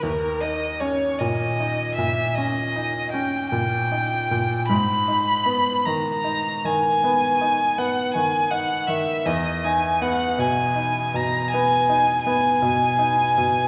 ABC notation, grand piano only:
X:1
M:12/8
L:1/8
Q:3/8=52
K:G#m
V:1 name="Grand piano"
D,, D C A,, D A,, C D C A,, D A,, | G,, D B, D, D D, B, D B, D, D D, | E,, D B, B,, D B,, B, D B, B,, D B,, |]